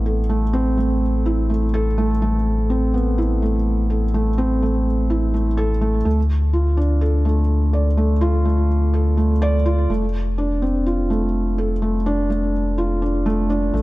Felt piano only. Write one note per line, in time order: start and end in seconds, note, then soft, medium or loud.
0.00 0.29 A3 medium
0.00 2.94 B3 medium
0.00 0.53 C4 medium
0.00 1.26 E4 medium
0.06 0.19 A4 medium
0.29 0.43 A3 medium
0.53 0.76 C4 loud
0.77 1.00 A3 medium
1.26 1.48 E4 medium
1.50 1.63 A3 medium
1.74 1.87 A4 loud
1.98 2.11 A3 medium
2.22 2.35 A3 medium
2.70 2.93 C4 medium
2.94 3.17 B3 medium
3.18 3.41 E4 medium
3.42 3.56 A3 medium
3.90 4.03 A4 medium
4.14 4.28 A3 medium
4.38 4.61 C4 loud
4.62 4.85 A3 medium
5.10 5.33 E4 medium
5.34 5.47 A3 medium
5.57 5.71 A4 medium
5.81 5.95 A3 medium
6.05 6.19 A3 medium
6.53 6.76 F4 medium
6.77 7.00 D4 medium
7.01 7.24 A4 medium
7.25 7.39 A3 medium
7.73 7.87 D5 medium
7.97 8.11 A3 medium
8.21 8.44 F4 medium
8.45 8.68 A3 medium
8.94 9.16 A4 medium
9.17 9.31 A3 medium
9.42 9.55 D5 loud
9.66 9.88 F4 medium
9.90 10.03 A3 medium
10.38 10.61 D4 medium
10.62 10.85 C4 medium
10.86 11.09 F4 medium
11.10 11.24 A3 medium
11.58 11.72 A4 medium
11.82 11.95 A3 medium
12.06 12.29 D4 medium
12.30 12.53 A3 medium
12.78 13.01 F4 medium
13.02 13.25 D4 medium
13.26 13.49 A3 loud
13.50 13.72 D4 medium
13.73 13.82 A3 medium